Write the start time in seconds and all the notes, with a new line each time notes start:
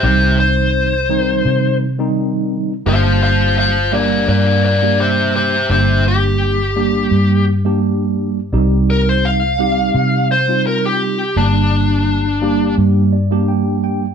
0.03 C2 D#3 G3 C4 D#4 G4 C5
0.40 C5
1.09 D#3 G3 C4 D#4
1.45 C3
1.99 D#3 G3 C4 D#4
2.86 G1 G3 A#3 D4 G4 C5 F5
3.23 C5 F5
3.58 C5 F5
3.92 G3 A#3 D4 G4 A#4 D5
4.28 G2 A#4 D5
4.64 A#4 D5
4.82 G3 A#3 D4 G4
5.00 G4 C5
5.36 G4 C5
5.69 G1 G3 A#3 D4 G4 C5
6.08 G4
6.76 G3 A#3 D4 G4
7.11 G2
7.65 G3 A#3 D4 G4
8.53 C2 G3 C4 D#4 G4
8.90 A#4
9.09 C5
9.25 F5
9.59 G3 C4 D#4 G4
9.94 C3
10.31 C5
10.48 G3 C4 D#4 F4
10.67 A#4
10.85 G4
11.36 G1 G3 A#3 D4 G4
12.42 G3 A#3 D4 G4
12.78 G2
13.13 D5
13.31 G3 A#3 D4 G4
13.48 G5
13.84 G5